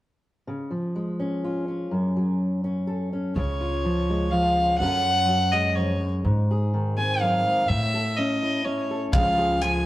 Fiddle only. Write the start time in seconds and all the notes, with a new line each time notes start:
3.36 C#5
4.30 F5
4.78 F#5
5.52 D#5
5.75 C#5
6.97 G#5
7.21 F5
7.68 E5
8.17 D#5
8.65 C#5
9.13 F5
9.61 G#5